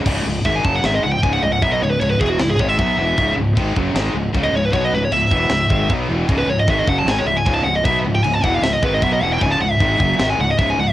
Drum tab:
CC |x-x-x-x-|x-x-x-x-|x-x-x-x-|x-x-x-x-|
SD |----o---|----o---|----o---|----o---|
BD |o-oo--o-|o--o-oo-|o-oo--o-|o--o-oo-|

CC |x-x-x-x-|x-x-x-x-|x-x-x-x-|
SD |----o---|----o---|----o---|
BD |o-oo--o-|o--o-oo-|o-oo--o-|